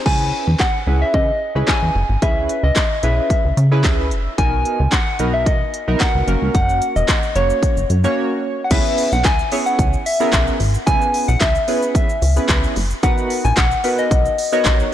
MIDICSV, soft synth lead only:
0, 0, Header, 1, 2, 480
1, 0, Start_track
1, 0, Tempo, 540541
1, 53, Time_signature, 4, 2, 24, 8
1, 13265, End_track
2, 0, Start_track
2, 0, Title_t, "Soft synth lead"
2, 0, Program_c, 0, 80
2, 51, Note_on_c, 0, 80, 112
2, 533, Note_on_c, 0, 78, 105
2, 547, Note_off_c, 0, 80, 0
2, 903, Note_on_c, 0, 76, 89
2, 916, Note_off_c, 0, 78, 0
2, 1015, Note_on_c, 0, 75, 99
2, 1028, Note_off_c, 0, 76, 0
2, 1494, Note_on_c, 0, 80, 105
2, 1507, Note_off_c, 0, 75, 0
2, 1974, Note_on_c, 0, 76, 97
2, 1988, Note_off_c, 0, 80, 0
2, 2341, Note_on_c, 0, 75, 87
2, 2354, Note_off_c, 0, 76, 0
2, 2694, Note_on_c, 0, 76, 96
2, 2707, Note_off_c, 0, 75, 0
2, 3653, Note_off_c, 0, 76, 0
2, 3890, Note_on_c, 0, 80, 121
2, 4371, Note_on_c, 0, 78, 109
2, 4385, Note_off_c, 0, 80, 0
2, 4739, Note_on_c, 0, 76, 92
2, 4752, Note_off_c, 0, 78, 0
2, 4847, Note_off_c, 0, 76, 0
2, 4852, Note_on_c, 0, 75, 96
2, 5331, Note_on_c, 0, 78, 105
2, 5345, Note_off_c, 0, 75, 0
2, 5806, Note_off_c, 0, 78, 0
2, 5812, Note_on_c, 0, 78, 105
2, 6181, Note_on_c, 0, 75, 95
2, 6195, Note_off_c, 0, 78, 0
2, 6535, Note_on_c, 0, 73, 91
2, 6548, Note_off_c, 0, 75, 0
2, 7494, Note_off_c, 0, 73, 0
2, 7676, Note_on_c, 0, 78, 70
2, 7735, Note_on_c, 0, 76, 98
2, 7749, Note_off_c, 0, 78, 0
2, 8105, Note_on_c, 0, 78, 100
2, 8119, Note_off_c, 0, 76, 0
2, 8216, Note_on_c, 0, 80, 114
2, 8229, Note_off_c, 0, 78, 0
2, 8581, Note_on_c, 0, 78, 99
2, 8594, Note_off_c, 0, 80, 0
2, 8934, Note_on_c, 0, 76, 91
2, 8947, Note_off_c, 0, 78, 0
2, 9414, Note_off_c, 0, 76, 0
2, 9649, Note_on_c, 0, 80, 123
2, 10019, Note_on_c, 0, 78, 103
2, 10032, Note_off_c, 0, 80, 0
2, 10130, Note_on_c, 0, 76, 96
2, 10143, Note_off_c, 0, 78, 0
2, 10606, Note_off_c, 0, 76, 0
2, 10611, Note_on_c, 0, 76, 80
2, 11059, Note_off_c, 0, 76, 0
2, 11574, Note_on_c, 0, 78, 102
2, 11940, Note_on_c, 0, 80, 95
2, 11954, Note_off_c, 0, 78, 0
2, 12052, Note_on_c, 0, 78, 97
2, 12066, Note_off_c, 0, 80, 0
2, 12421, Note_on_c, 0, 75, 89
2, 12435, Note_off_c, 0, 78, 0
2, 12897, Note_off_c, 0, 75, 0
2, 12903, Note_on_c, 0, 75, 94
2, 13265, Note_off_c, 0, 75, 0
2, 13265, End_track
0, 0, End_of_file